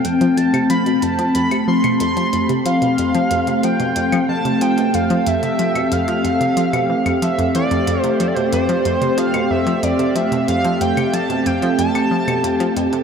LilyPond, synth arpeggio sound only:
\new Staff \with { instrumentName = "Synth arpeggio sound" } { \clef bass \time 4/4 \key f \lydian \tempo 4 = 92 f,16 f16 f,16 c16 f16 b,16 f,16 f16 f,16 c16 f16 b,16 f,16 f16 f,16 c16 | f16 b,16 f,16 f16 f,16 c16 f16 b,16 f,16 f16 f,16 c16 f16 b,16 f,16 f16 | f,16 c16 f16 b,16 f,16 f16 f,16 c16 f16 b,16 e16 f,16 f16 f,16 e16 f,16 | f,16 c16 f16 b,16 f,16 f16 f,16 c16 f16 b,16 f,16 f16 f,16 c16 f16 b,16 |
f,16 f16 f,16 c16 f16 b,16 f,16 f16 f,16 c16 f16 b,16 f,16 f16 f,16 c16 | }